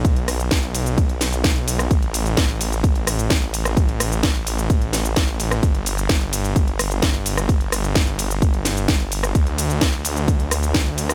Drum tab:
RD |x-x-x-x-x-x-x-x-|x-x-x-x-x-x-x-x-|x-x-x-x-x-x-x-x-|x-x-x-x-x-x-x-x-|
HH |xxoxxxoxxxoxxxox|xxoxxxoxxxoxxxox|xxoxxxoxxxoxxxox|xxoxxxoxxxoxxxox|
SH |x-xxx-xxx-xxx-xx|x-xxx-xxx-xxx-xx|x-xxx-xxx-xxx-xx|x-xxx-xxx-xxx-xx|
SD |--r-o-----o-o--r|----o-----r-o--r|--r-o-----o-o--r|----o-----r-o--r|
BD |o---o---o---o---|o---o---o---o---|o---o---o---o---|o---o---o---o---|

RD |x-x-x-x-x-x-x-x-|x-x-x-x-x-x-x-x-|
HH |xxoxxxoxxxoxxxox|xxoxxxoxxxoxxxox|
SH |x-xxx-xxx-xxx-xx|x-xxx-xxx-xxx-xx|
SD |--r-o-----o-o--r|----o-----r-o--r|
BD |o---o---o---o---|o---o---o---o---|